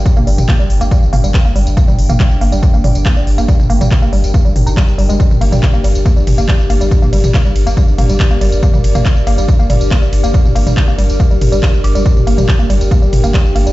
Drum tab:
RD |----------------|----------------|----------------|--x---x---x---x-|
HH |x-oxx-oxx-oxx-ox|x-oxx-oxx-oxx-ox|x-oxx-oxx-oxx-ox|x-oxx-oxx-oxx-ox|
TB |xx-x-x-xxx-xxx-x|xx-xxx-xxx-xxx-x|xx-xxx-xxx-xxx-x|xx-xxx-xxx-xxx-x|
CP |----x-------x---|----x-------x---|----x-------x---|----x-------x---|
T2 |-o-o------o-----|-o-o------o-----|-o-o------o-----|-o-o------o-----|
BD |o---o---o---o---|o---o---o---o---|o---o---o---o---|o---o---o---o---|

RD |--x---x---x---x-|--x---x---x---x-|--x---x---x---x-|--x---x---x---x-|
HH |x-oxx-oxx-oxx-ox|x-oxx-oxx-oxx-ox|x-oxx-oxx-oxx-ox|x-oxx-oxx-oxx-ox|
TB |xx-xxx-xxx-xxx-x|xx-xxx-xxx-xxx-x|xx-x-x-xxx-xxx-x|xx-xxx-xxx-xxx-x|
CP |----x-------x---|----x-------x---|----x-------x---|----x-------x---|
T2 |-o-o------o-----|-o-o------o-----|-o-o------o-----|-o-o------o-----|
BD |o---o---o---o---|o---o---o---o---|o---o---o---o---|o---o---o---o---|